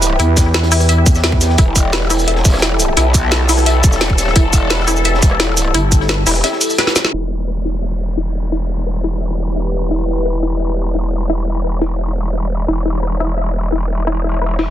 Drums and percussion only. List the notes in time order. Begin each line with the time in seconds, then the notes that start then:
0.02 closed hi-hat, shaker
0.19 closed hi-hat
0.36 kick, snare, closed hi-hat, shaker
0.54 snare, closed hi-hat, shaker
0.63 snare, closed hi-hat
0.72 open hi-hat, shaker
0.80 cross-stick, closed hi-hat, shaker
0.89 closed hi-hat
1.06 kick, closed hi-hat, shaker
1.15 snare, shaker
1.24 snare, closed hi-hat
1.32 kick
1.41 snare, closed hi-hat, shaker
1.50 snare
1.58 kick, closed hi-hat
1.75 kick, closed hi-hat, shaker
1.93 snare, closed hi-hat, shaker
2.01 snare
2.10 cross-stick, closed hi-hat, open hi-hat, shaker
2.19 shaker
2.28 closed hi-hat
2.36 snare
2.45 kick, snare, closed hi-hat, shaker
2.49 snare, closed hi-hat
2.53 cross-stick, snare, closed hi-hat
2.58 snare, closed hi-hat
2.62 snare, closed hi-hat
2.80 closed hi-hat, shaker
2.97 closed hi-hat
3.14 kick, closed hi-hat, shaker
3.31 snare, closed hi-hat, shaker
3.49 closed hi-hat, open hi-hat, shaker
3.58 cross-stick, shaker
3.66 closed hi-hat
3.83 kick, closed hi-hat, shaker
3.92 snare, shaker
4.01 snare, closed hi-hat
4.10 kick
4.18 snare, closed hi-hat, shaker
4.27 snare
4.36 kick, closed hi-hat
4.53 kick, closed hi-hat, shaker
4.70 snare, closed hi-hat, shaker
4.79 snare
4.87 cross-stick, snare, closed hi-hat, shaker
4.96 shaker
5.04 closed hi-hat
5.14 snare
5.22 kick, closed hi-hat, shaker
5.31 cross-stick
5.40 snare, closed hi-hat
5.57 closed hi-hat, shaker
5.74 closed hi-hat
5.92 kick, closed hi-hat, shaker
6.00 snare
6.09 snare, closed hi-hat, shaker
6.27 closed hi-hat, open hi-hat, shaker
6.35 shaker
6.44 snare, closed hi-hat
6.52 snare
6.60 closed hi-hat, open hi-hat, shaker
6.70 shaker
6.78 snare, closed hi-hat
6.87 snare, closed hi-hat
6.96 snare, closed hi-hat, shaker
7.05 snare
9.04 open hi-hat
11.81 open hi-hat
14.59 open hi-hat